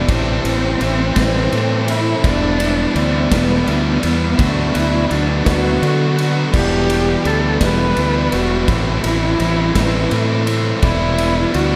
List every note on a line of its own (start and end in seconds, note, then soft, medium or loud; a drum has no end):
0.00 0.10 E4 medium
0.08 0.39 A1 loud
0.08 0.80 A2 loud
0.08 0.80 E3 loud
0.08 0.46 A3 loud
0.08 1.91 C4 loud
0.08 0.45 C4 loud
0.08 0.45 E4 loud
0.08 0.44 C5 loud
0.08 kick loud
0.08 ride loud
0.45 0.75 A1 medium
0.45 0.80 A3 medium
0.45 0.80 C4 medium
0.45 0.82 E4 medium
0.45 1.16 C5 medium
0.45 ride medium
0.80 1.11 A1 medium
0.80 1.51 E3 medium
0.80 1.17 A3 medium
0.80 1.16 C4 medium
0.80 1.14 E4 medium
0.80 ride medium
1.16 1.47 A1 loud
1.16 1.52 A3 medium
1.16 1.52 C4 medium
1.16 1.53 E4 medium
1.16 1.52 B4 medium
1.16 kick medium
1.16 snare loud
1.16 ride loud
1.52 2.13 A2 medium
1.52 2.22 E3 medium
1.52 1.89 A3 medium
1.52 1.88 C4 medium
1.52 1.86 E4 loud
1.52 2.24 A4 medium
1.52 ride medium
1.87 2.23 A3 medium
1.87 2.22 C4 medium
1.87 2.21 E4 medium
1.87 2.27 E4 loud
1.87 ride medium
2.23 2.85 E1 medium
2.23 2.94 E3 medium
2.23 2.61 G3 loud
2.23 2.61 B3 loud
2.23 2.99 D4 loud
2.23 2.58 E4 loud
2.23 2.95 D5 loud
2.23 kick loud
2.23 ride loud
2.60 2.95 G3 medium
2.60 2.97 B3 medium
2.60 2.97 E4 medium
2.60 ride loud
2.95 3.26 D2 loud
2.95 3.65 E3 medium
2.95 3.32 G3 medium
2.95 3.32 B3 medium
2.95 3.31 C4 medium
2.95 3.30 E4 medium
2.95 3.32 D5 medium
2.95 ride medium
3.31 3.62 E1 loud
3.31 3.66 G3 medium
3.31 3.99 B3 loud
3.31 3.68 B3 medium
3.31 3.68 E4 medium
3.31 3.67 B4 medium
3.31 kick medium
3.31 snare loud
3.31 ride loud
3.66 3.98 D2 medium
3.66 4.36 E3 medium
3.66 4.04 G3 medium
3.66 4.04 B3 medium
3.66 4.01 E4 medium
3.66 4.39 E5 medium
3.66 ride medium
4.03 4.34 E2 medium
4.03 4.38 G3 medium
4.03 4.39 B3 medium
4.03 4.41 B3 loud
4.03 4.36 E4 medium
4.03 ride medium
4.38 4.69 D2 loud
4.38 5.08 D3 medium
4.38 4.75 F#3 loud
4.38 4.77 A3 loud
4.38 4.75 B3 loud
4.38 4.73 F#4 loud
4.38 4.73 D5 loud
4.38 kick loud
4.38 ride loud
4.74 5.05 D2 loud
4.74 5.09 F#3 medium
4.74 5.10 B3 medium
4.74 5.13 E4 loud
4.74 5.10 F#4 medium
4.74 5.46 D5 medium
4.74 ride medium
5.09 5.41 D2 loud
5.09 5.80 D3 medium
5.09 5.45 F#3 medium
5.09 5.45 B3 medium
5.09 5.49 D4 medium
5.09 5.43 F#4 medium
5.09 ride medium
5.44 5.77 D2 loud
5.44 5.81 F#3 medium
5.44 5.82 B3 medium
5.44 5.82 F#4 medium
5.44 6.28 F#4 loud
5.44 5.82 B4 medium
5.44 kick medium
5.44 snare loud
5.44 ride loud
5.81 6.51 D3 medium
5.81 6.43 D3 medium
5.81 6.18 F#3 medium
5.81 6.17 B3 medium
5.81 6.16 F#4 medium
5.81 6.54 A4 medium
5.81 ride medium
6.17 6.52 F#3 medium
6.17 6.52 B3 medium
6.17 6.51 F#4 medium
6.17 ride medium
6.52 7.15 E1 medium
6.52 7.23 E3 loud
6.52 6.90 G3 medium
6.52 6.88 B3 loud
6.52 6.88 E4 loud
6.52 7.28 G4 loud
6.52 7.24 D5 loud
6.52 kick loud
6.52 crash loud
6.88 7.24 G3 medium
6.88 7.25 B3 medium
6.88 7.26 E4 medium
6.88 ride medium
7.24 7.56 D2 loud
7.24 7.96 E3 medium
7.24 7.62 G3 medium
7.24 7.61 B3 medium
7.24 7.60 E4 medium
7.24 7.61 A4 loud
7.24 7.61 D5 medium
7.24 ride medium
7.61 7.91 E1 loud
7.61 7.96 G3 medium
7.61 7.96 B3 medium
7.61 7.98 E4 medium
7.61 7.97 B4 medium
7.61 8.34 B4 loud
7.61 kick medium
7.61 snare loud
7.61 ride loud
7.96 8.27 D2 medium
7.96 8.68 E3 medium
7.96 8.33 G3 medium
7.96 8.32 B3 medium
7.96 8.31 E4 medium
7.96 8.68 D5 medium
7.96 ride medium
8.32 8.63 E1 medium
8.32 8.69 G3 medium
8.32 8.66 B3 medium
8.32 8.69 E4 medium
8.32 8.70 F#4 loud
8.32 ride medium
8.68 8.99 A1 loud
8.68 9.40 A2 medium
8.68 9.39 E3 loud
8.68 9.05 A3 loud
8.68 9.04 C4 loud
8.68 10.47 E4 loud
8.68 9.04 E4 loud
8.68 9.03 C5 loud
8.68 kick loud
8.68 ride loud
9.04 9.35 A1 loud
9.04 9.39 A3 medium
9.04 9.39 C4 medium
9.04 9.41 E4 medium
9.04 9.76 C5 medium
9.04 ride medium
9.39 9.70 A1 loud
9.39 10.09 E3 medium
9.39 9.76 A3 medium
9.39 9.75 C4 medium
9.39 9.73 E4 loud
9.39 ride medium
9.74 10.06 A1 loud
9.74 10.10 A3 medium
9.74 10.11 C4 medium
9.74 10.12 E4 medium
9.74 10.11 B4 medium
9.74 kick medium
9.74 snare loud
9.74 ride loud
10.10 10.72 A2 medium
10.10 10.80 E3 medium
10.10 10.47 A3 medium
10.10 10.47 C4 medium
10.10 10.45 E4 medium
10.10 10.83 A4 medium
10.10 ride medium
10.46 10.82 A3 medium
10.46 10.81 C4 medium
10.46 10.80 E4 medium
10.46 ride medium
10.82 11.44 E1 loud
10.82 11.52 E3 loud
10.82 11.19 G3 medium
10.82 11.19 B3 loud
10.82 11.56 E4 loud
10.82 11.16 E4 loud
10.82 11.53 D5 loud
10.82 kick loud
10.82 ride loud
11.18 11.53 G3 medium
11.18 11.54 B3 medium
11.18 11.54 E4 medium
11.18 ride medium
11.53 11.76 D2 loud
11.53 11.76 E3 medium
11.53 11.76 G3 medium
11.53 11.76 B3 medium
11.53 11.76 E4 loud
11.53 11.76 F#4 loud
11.53 11.76 D5 medium
11.53 ride medium